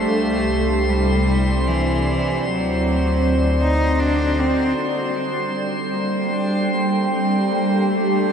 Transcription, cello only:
0, 0, Header, 1, 2, 480
1, 0, Start_track
1, 0, Tempo, 779221
1, 63, Time_signature, 3, 2, 24, 8
1, 5128, End_track
2, 0, Start_track
2, 0, Title_t, "Cello"
2, 0, Program_c, 0, 42
2, 0, Note_on_c, 0, 57, 95
2, 545, Note_on_c, 0, 55, 91
2, 554, Note_off_c, 0, 57, 0
2, 1026, Note_on_c, 0, 52, 81
2, 1035, Note_off_c, 0, 55, 0
2, 1507, Note_on_c, 0, 54, 81
2, 1517, Note_off_c, 0, 52, 0
2, 2217, Note_off_c, 0, 54, 0
2, 2221, Note_on_c, 0, 63, 94
2, 2461, Note_on_c, 0, 62, 90
2, 2470, Note_off_c, 0, 63, 0
2, 2704, Note_on_c, 0, 60, 80
2, 2713, Note_off_c, 0, 62, 0
2, 2944, Note_on_c, 0, 58, 89
2, 2954, Note_off_c, 0, 60, 0
2, 3177, Note_on_c, 0, 62, 85
2, 3187, Note_off_c, 0, 58, 0
2, 3422, Note_on_c, 0, 60, 90
2, 3432, Note_off_c, 0, 62, 0
2, 3656, Note_on_c, 0, 58, 79
2, 3665, Note_off_c, 0, 60, 0
2, 3897, Note_on_c, 0, 62, 93
2, 3906, Note_off_c, 0, 58, 0
2, 4147, Note_on_c, 0, 58, 78
2, 4156, Note_off_c, 0, 62, 0
2, 4382, Note_off_c, 0, 58, 0
2, 4386, Note_on_c, 0, 60, 85
2, 4626, Note_on_c, 0, 58, 83
2, 4635, Note_off_c, 0, 60, 0
2, 4861, Note_on_c, 0, 57, 88
2, 4871, Note_off_c, 0, 58, 0
2, 5105, Note_on_c, 0, 62, 95
2, 5114, Note_off_c, 0, 57, 0
2, 5128, Note_off_c, 0, 62, 0
2, 5128, End_track
0, 0, End_of_file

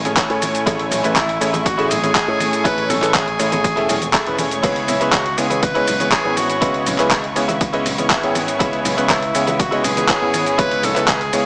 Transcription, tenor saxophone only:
0, 0, Header, 1, 2, 480
1, 0, Start_track
1, 0, Key_signature, 4, "minor"
1, 0, Tempo, 495868
1, 649, Time_signature, 4, 2, 24, 8
1, 11090, End_track
2, 0, Start_track
2, 0, Title_t, "Tenor saxophone"
2, 0, Program_c, 0, 66
2, 1131, Note_on_c, 0, 64, 93
2, 1601, Note_on_c, 0, 66, 103
2, 1616, Note_off_c, 0, 64, 0
2, 1840, Note_on_c, 0, 68, 108
2, 1855, Note_off_c, 0, 66, 0
2, 2563, Note_on_c, 0, 71, 115
2, 2578, Note_off_c, 0, 68, 0
2, 2803, Note_on_c, 0, 69, 105
2, 2817, Note_off_c, 0, 71, 0
2, 3045, Note_on_c, 0, 68, 102
2, 3059, Note_off_c, 0, 69, 0
2, 4247, Note_off_c, 0, 68, 0
2, 4731, Note_on_c, 0, 64, 88
2, 4964, Note_on_c, 0, 66, 97
2, 4978, Note_off_c, 0, 64, 0
2, 5204, Note_on_c, 0, 68, 101
2, 5219, Note_off_c, 0, 66, 0
2, 5444, Note_on_c, 0, 71, 121
2, 5459, Note_off_c, 0, 68, 0
2, 5927, Note_on_c, 0, 68, 107
2, 5942, Note_off_c, 0, 71, 0
2, 6166, Note_on_c, 0, 66, 98
2, 6180, Note_off_c, 0, 68, 0
2, 6887, Note_off_c, 0, 66, 0
2, 8810, Note_on_c, 0, 64, 93
2, 9287, Note_on_c, 0, 66, 97
2, 9302, Note_off_c, 0, 64, 0
2, 9528, Note_on_c, 0, 68, 110
2, 9542, Note_off_c, 0, 66, 0
2, 10246, Note_on_c, 0, 71, 119
2, 10261, Note_off_c, 0, 68, 0
2, 10494, Note_on_c, 0, 69, 105
2, 10508, Note_off_c, 0, 71, 0
2, 10733, Note_on_c, 0, 68, 101
2, 10747, Note_off_c, 0, 69, 0
2, 11090, Note_off_c, 0, 68, 0
2, 11090, End_track
0, 0, End_of_file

